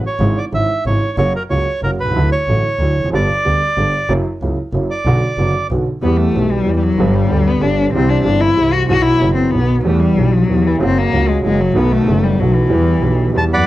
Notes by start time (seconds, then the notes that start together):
0.07 C#5
0.20 G#1 G#2 C#3 E3 G#3 E4
0.38 D5
0.52 G#1 G#2 C#3 E3 G#3 E4 E5
0.86 G#1 G#2 C#3 E3 G#3 E4 C#5
1.17 F#1 F#2 C#3 F#3 A#3 F#4 C#5
1.36 A#4
1.50 C#2 C#3 F#3 A#3 F#4 C#5
1.83 F#1 F#2 C#3 F#3 A#3 F#4 A#4
1.99 C2 B4
2.05 B1
2.09 C2 C#2
2.15 D2 D3 F#3 A3 E4
2.32 C#5
2.47 A1 A2 D3 F#3 A3 E4
2.79 D2 D3 F#3 A3 E4
2.97 F1
3.01 E2 F2
3.10 G1 F#2 G2 D3 G3 B3 G4
3.15 D5
3.45 D2 D3 G3 B3 G4
3.77 G1 G2 D3 G3 B3 G4
4.09 F#1 F#2 C#3 F#3 A#3 E4
4.42 C#2 C#3 F#3 A#3 E4
4.73 F#1 F#2 C#3 F#3 A#3 E4
4.91 D5
5.05 B1 B2 D3 F#3 B3 F#4
5.38 F#1 F#2 D3 F#3 B3 F#4
5.70 B1 B2 D3 F#3 B3 F#4
6.02 E2 E3 G3 B3 G4
6.17 A3
6.33 B1 B2 E3 G3 B3 G4
6.51 G3
6.65 E2 E3 G3 B3
6.69 G4
6.76 G3
6.83 F#3
6.97 G1 G2 D3 G3 B3
7.02 G4
7.15 G3
7.29 D2 D3 G3 B3
7.33 G4
7.47 B3
7.61 G1 G2 D3 G3 B3 D4 G4
7.93 C2 C3 E3 G3 C4
7.97 G4
8.10 D4
8.23 G1 G2 E3 G3 C4 D4 G4
8.40 E4
8.55 C2 C3 E3 G3 C4
8.60 G4
8.73 F#4
8.87 B1 B2 E3 F#3 B3 F#4
8.92 F#4
9.02 E4
9.18 F#1 F#2 E3 F#3 B3
9.22 F#4
9.35 C4
9.51 B1 B2 D#3 F#3 B3
9.55 F#4
9.84 E2 E3 G3 A3 B3
9.88 G4
10.00 G3
10.16 B1 B2 E3 G3 B3
10.20 G4
10.33 F#3
10.47 E2 E3 G3 B3
10.51 G4
10.67 E3
10.78 F#1 F#2 C#3 F#3 A#3
10.83 C4 F#4
10.98 A#3
11.11 C#2 C#3 F#3 A#3
11.15 F#4
11.28 G#3
11.42 F#1 F#2 C#3 F#3 G#3 A#3
11.46 F#4
11.60 F#3
11.74 B1 B2 D#3 A3 B3 F#4
11.92 A3
12.06 F#1 F#2 D#3 A3 B3 F#4
12.24 G3
12.38 B1 B2 D#3 F#3 A3 B3
12.42 F#4
12.55 E3
12.69 E2 E3 G3 B3 G4
13.00 B1 B2 E3 G3 B3 G4
13.31 E2 E3 G3 B3
13.36 G4 A5
13.52 F#2 D5 F#5 B5